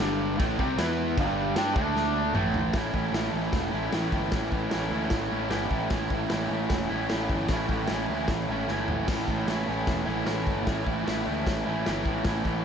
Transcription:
0.00 G1 G2 D3 G3
0.37 A1 A2 E3 A3, kick, crash
0.59 C2 C3 G3 C4, kick
0.78 E2 E3 B3 E4, snare, crash
1.17 G1 G2 D3 G3, kick, crash
1.55 G2 G3 D4 G4, snare, crash
1.75 D2 D3 A3 D4, kick
1.96 snare
2.33 A1 A2 E3 A3, mid tom
2.54 floor tom
2.73 A1 A2 E3 A3 C#4 E4, kick, snare, open hi-hat
2.93 A1 A3 C#4 E4, kick
3.11 A1 E3 A3, snare, open hi-hat
3.16 C#4 E4
3.33 A1 C#4 E4
3.38 A3
3.52 E1, kick, snare, open hi-hat
3.72 A1 A3 C#4 E4
3.92 A1 A2 E3 A3 C#4, snare, open hi-hat
3.97 E4
4.12 G1, kick
4.31 A1 A2 E3 A3 C#4 E4, kick, snare, open hi-hat
4.50 A1 A3 C#4 E4, kick
4.70 A1 E3 A3 C#4, snare, open hi-hat
4.74 E4
4.91 D2 C#4 E4
4.95 A3
5.10 A1, kick, snare, open hi-hat
5.29 A1 A3 C#4 E4
5.49 G1 A2 E3 A3 C#4 E4, snare, open hi-hat
5.70 A1, kick
5.90 A1 A2 E3 A3 C#4, kick, snare, open hi-hat
5.95 E4
6.10 A1 A3 C#4 E4, kick
6.29 A1 E3 A3 C#4, snare, open hi-hat
6.34 E4
6.48 A1 A3 C#4 E4
6.69 E1, kick, snare, open hi-hat
6.90 A1 C#4 E4
6.94 A3
7.09 A1 A2 E3 A3, snare, open hi-hat
7.14 C#4 E4
7.29 G1, kick
7.48 A1 A2 E3 A3, kick, snare, open hi-hat
7.53 C#4 E4
7.69 A1 C#4 E4, kick
7.74 A3
7.87 A1 E3, snare, open hi-hat
7.92 A3 C#4 E4
8.09 D2 C#4 E4
8.13 A3
8.28 A1, kick, snare, open hi-hat
8.48 A1 C#4 E4
8.53 A3
8.67 G1 A2 E3 A3 C#4 E4, snare
8.88 A1, floor tom
9.05 A1 A2 E3 A3 C#4, kick, snare, open hi-hat, crash
9.10 E4
9.26 A1 A3 C#4 E4, kick
9.46 A1 E3 A3 C#4, snare, open hi-hat
9.51 E4
9.67 A1 A3 C#4 E4
9.87 E1, kick, snare, open hi-hat
10.05 A1 A3 C#4 E4
10.24 A1 A2 E3 A3 C#4 E4, snare, open hi-hat
10.47 G1, kick
10.64 A1 A2 E3 A3 C#4 E4, kick, snare, open hi-hat
10.83 A1 C#4 E4, kick
10.87 A3
11.04 E3 A3 C#4 E4, snare, open hi-hat
11.08 A1
11.25 D2 A3 C#4 E4
11.47 A1, kick, snare, open hi-hat
11.66 A1 A3 C#4 E4
11.85 G1 A2 E3 A3 C#4 E4, snare, open hi-hat
12.06 A1, kick
12.23 A1 A2 E3 A3 C#4, kick, snare, open hi-hat
12.28 E4
12.43 A1 C#4 E4, kick
12.47 A3

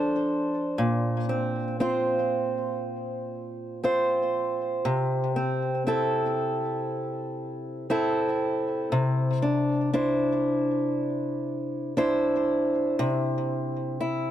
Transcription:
Already playing: F3 D4 A4 C5
0.78 A#2
1.29 C4
1.80 C4 F4 C5
3.84 C4 F4 C5
4.85 C3
5.36 C4
5.87 C4 E4 A4
7.90 C4 E4 A4
8.92 C3
9.42 D4
9.93 D4 E4 C5
11.97 D4 E4 C5
12.99 C3
14.00 E4

